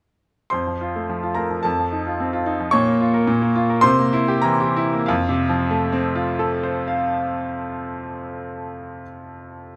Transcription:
0.50 1.61 F2 medium
0.50 1.32 C5 medium
0.50 1.36 C6 medium
0.67 0.90 F3 soft
0.81 1.04 F4 medium
0.96 1.18 A3 medium
1.09 1.31 F3 medium
1.23 1.45 F4 medium
1.35 1.59 A3 medium
1.35 1.62 A#4 medium
1.35 1.63 A#5 medium
1.51 1.65 F3 soft
1.63 2.70 F2 medium
1.63 2.42 A4 medium
1.63 2.45 A5 medium
1.79 2.01 F3 medium
1.92 2.14 D#4 medium
2.06 2.28 F4 medium
2.20 2.41 C4 medium
2.33 2.54 F4 medium
2.46 2.68 D#4 medium
2.60 2.73 F3 medium
2.71 3.26 A#2 medium
2.71 3.80 C#5 medium
2.71 3.84 C#6 loud
2.87 3.09 A#3 medium
3.01 3.23 F4 medium
3.14 3.28 A#4 medium
3.27 3.83 A#2 medium
3.42 3.64 A#3 medium
3.55 3.79 F4 medium
3.70 3.84 A#4 medium
3.81 5.05 C3 medium
3.81 4.40 C5 medium
3.81 4.43 C6 loud
3.99 4.23 A#3 medium
4.13 4.38 E4 medium
4.28 4.54 G4 medium
4.42 4.70 E3 medium
4.42 5.04 A#4 medium
4.42 5.07 A#5 medium
4.60 4.86 G4 medium
4.76 5.02 E4 medium
4.93 5.09 A#3 medium
5.06 9.02 F2 medium
5.06 6.86 F5 medium
5.29 9.02 C3 medium
5.49 9.02 F3 medium
5.71 9.02 A3 medium
5.92 9.02 C4 medium
6.15 9.02 F4 medium
6.39 9.02 A4 medium
6.63 9.02 C5 medium
6.87 9.02 F5 medium

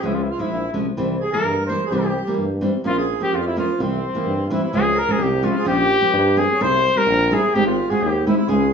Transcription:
0.02 0.31 C#2 medium
0.02 0.20 F3 medium
0.02 0.21 G#3 medium
0.02 0.21 C#4 medium
0.07 0.17 E4 medium
0.15 0.24 F4 medium
0.23 0.33 E4 medium
0.31 0.43 F4 medium
0.31 0.38 F4 soft
0.38 0.56 F3 medium
0.38 0.56 G#3 medium
0.38 0.71 E4 medium
0.38 0.57 E4 medium
0.42 0.75 E4 medium
0.50 0.71 A#1 medium
0.73 0.94 C2 medium
0.73 0.85 F3 medium
0.73 0.85 G#3 medium
0.73 0.86 C#4 medium
0.96 1.25 C2 medium
0.96 1.15 E3 medium
0.96 1.15 G3 medium
0.96 1.15 C4 medium
1.21 1.33 G#4 medium
1.21 1.32 G#4 medium
1.32 1.50 E3 medium
1.32 1.50 G3 medium
1.32 1.50 A#3 medium
1.32 1.69 A#4 medium
1.32 1.65 A#4 loud
1.44 1.72 G2 medium
1.66 1.80 E3 medium
1.66 1.80 G3 medium
1.66 1.80 A#3 medium
1.66 1.92 C5 medium
1.66 1.84 C5 medium
1.86 1.92 G#4 medium
1.90 2.19 C2 medium
1.90 2.09 E3 medium
1.90 2.09 G3 medium
1.90 2.10 C4 medium
1.90 2.38 G4 medium
1.90 2.34 G4 medium
2.27 2.44 E3 medium
2.27 2.44 G3 medium
2.27 2.44 A#3 medium
2.39 2.67 G2 medium
2.61 2.73 E3 medium
2.61 2.74 G3 medium
2.61 2.73 C4 medium
2.84 3.14 A#1 medium
2.84 3.02 F3 medium
2.84 3.02 A#3 medium
2.84 3.03 C#4 medium
2.84 2.91 E4 medium
2.84 2.88 F4 medium
2.84 2.97 F4 loud
2.91 2.96 F4 medium
2.98 3.22 G#4 medium
2.98 3.20 G#4 medium
3.20 3.38 F3 soft
3.20 3.38 A#3 medium
3.20 3.38 C#4 medium
3.20 3.33 G4 medium
3.20 3.37 G4 loud
3.32 3.61 F2 medium
3.32 3.35 F4 medium
3.32 3.45 F4 medium
3.32 3.38 G4 medium
3.40 3.45 F4 medium
3.46 3.57 E4 medium
3.56 3.68 F3 medium
3.56 3.68 A#3 medium
3.56 3.68 C#4 medium
3.56 3.81 F4 medium
3.56 3.83 F4 medium
3.79 4.07 C2 medium
3.79 3.97 E3 medium
3.79 3.97 G3 medium
3.79 3.97 C4 medium
3.79 4.46 C4 medium
3.83 4.48 C4 medium
4.15 4.32 E3 medium
4.15 4.32 G3 medium
4.15 4.33 A#3 medium
4.26 4.54 G2 medium
4.46 4.54 F4 medium
4.50 4.62 E3 medium
4.50 4.62 G3 medium
4.50 4.62 C4 medium
4.50 4.61 E4 medium
4.50 4.63 E4 medium
4.63 4.74 E4 medium
4.73 5.02 C#2 medium
4.73 4.91 F3 medium
4.73 4.91 G#3 medium
4.73 4.91 C#4 medium
4.73 5.00 G#4 loud
4.73 4.98 G#4 medium
4.95 5.20 A#4 loud
4.95 5.13 A#4 loud
5.09 5.26 F3 medium
5.09 5.26 G#3 medium
5.09 5.26 C#4 medium
5.09 5.24 G#4 medium
5.18 5.48 C2 loud
5.18 5.43 G4 medium
5.23 5.46 G4 medium
5.42 5.55 F3 medium
5.42 5.55 G#3 medium
5.42 5.55 C#4 medium
5.42 5.48 F4 medium
5.42 5.67 F4 medium
5.49 5.55 E4 medium
5.55 5.66 F4 medium
5.55 5.67 G#4 medium
5.65 5.95 A#1 medium
5.65 5.84 F3 medium
5.65 5.84 A#3 medium
5.65 5.84 C#4 medium
5.65 6.39 G4 medium
5.65 6.40 G4 loud
6.01 6.19 F3 medium
6.01 6.20 A#3 medium
6.01 6.20 C#4 medium
6.13 6.42 G2 loud
6.36 6.49 F3 medium
6.36 6.49 A#3 medium
6.36 6.49 C4 medium
6.36 6.54 G#4 medium
6.36 6.64 G#4 loud
6.54 6.61 C#5 medium
6.60 6.89 C2 medium
6.60 6.78 G3 medium
6.60 6.78 C4 medium
6.60 6.79 E4 medium
6.60 6.99 C5 loud
6.60 6.95 C5 loud
6.96 7.14 G3 medium
6.96 7.14 C4 medium
6.96 7.14 G4 medium
6.96 7.29 A#4 medium
6.96 7.35 A#4 loud
7.07 7.35 A#1 loud
7.31 7.43 G3 medium
7.31 7.43 C4 medium
7.31 7.43 E4 medium
7.31 7.53 G#4 medium
7.31 7.56 G#4 loud
7.54 7.82 G#1 medium
7.54 7.73 G#3 medium
7.54 7.73 C4 medium
7.54 7.73 D#4 medium
7.54 7.65 G4 medium
7.54 7.66 G4 loud
7.67 7.92 F4 medium
7.67 7.88 F4 medium
7.89 8.08 G#3 medium
7.89 8.08 C4 medium
7.89 8.08 F#4 medium
7.89 8.02 G#4 medium
7.89 8.05 G#4 loud
8.00 8.30 D#2 loud
8.00 8.25 G4 medium
8.00 8.26 G4 medium
8.26 8.38 G#3 medium
8.26 8.38 C4 medium
8.26 8.38 D#4 medium
8.26 8.35 E4 medium
8.26 8.37 E4 medium
8.36 8.49 E4 medium
8.36 8.50 E4 medium
8.48 8.73 C#2 medium
8.48 8.66 G#3 medium
8.48 8.66 C#4 medium
8.48 8.66 F4 medium
8.48 8.73 G#4 medium
8.48 8.72 G#4 medium

